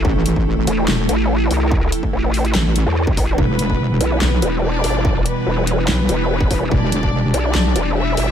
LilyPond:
<<
  \new Staff \with { instrumentName = "Violin section" } { \time 4/4 \key e \minor \tempo 4 = 144 r1 | r1 | <b b'>4. <b b'>4. <d' d''>4~ | <d' d''>8 <b b'>4. <b b'>2 |
<d' d''>4. <d' d''>4. <e' e''>4 | }
  \new Staff \with { instrumentName = "Ambient pad" } { \clef bass \time 4/4 \key e \minor << { <c e a a'>1~ | <c e a a'>1 | <b, e g g'>1~ | <b, e g g'>1~ |
<b, e g g'>1 | } \\ { e'1~ | e'1~ | e'1~ | e'1 |
d'1 | } >> }
  \new Staff \with { instrumentName = "Wobble bass" } { \clef bass \time 4/4 \key e \minor a,,4. r8 e,,8 r4. | r2 a,,8 r4. | e,,4. r8 b,,8 r4. | r2 b,,8 r4. |
e,,4. r8 b,,8 r4. | }
  \new Staff \with { instrumentName = "Wobble bass" } { \clef bass \time 4/4 \key e \minor r4. e,,8 r8 a,,4 c,8~ | c,8 r8 a,,4 r8. e,8 a,,8. | r4. b,,8 r8 e,,4 g,,8~ | g,,8 r8 e,,4 r8 e,,4 e,,8 |
r4. b,,8 r8 e,,4 g,,8 | }
  \new DrumStaff \with { instrumentName = "Drums" } \drummode { \time 4/4 bd8 hh16 bd16 r8 hh8 <hc sn>8 hh8 r8 hho8 | bd8 hh16 bd16 r8 hho16 hh16 <hc sn>8 hh8 r16 bd16 <hho bd>8 | bd8 hh16 bd16 r8 hh8 <hc sn>8 hh8 r8 hho8 | bd8 hh8 r8 hh8 <hc sn>8 hh8 r16 bd16 <hho bd>8 |
bd8 hh16 bd16 r8 hh8 <hc sn>8 hh8 r8 hho8 | }
>>